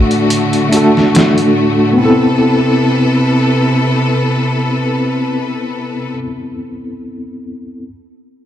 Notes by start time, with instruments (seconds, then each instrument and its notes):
Already playing: string section A2 D3 A3 F#4, tine electric piano A3 D4 F#4 A4
0.11 closed hi-hat
0.30 closed hi-hat
0.53 closed hi-hat
0.69 tine electric piano A3 D4, closed hi-hat
0.74 tine electric piano F#4 A4
0.97 snare
1.15 snare, closed hi-hat
1.38 closed hi-hat
1.93 tine electric piano B3
1.97 string section C3 A4 B4, tine electric piano C4 E4
2.05 tine electric piano A4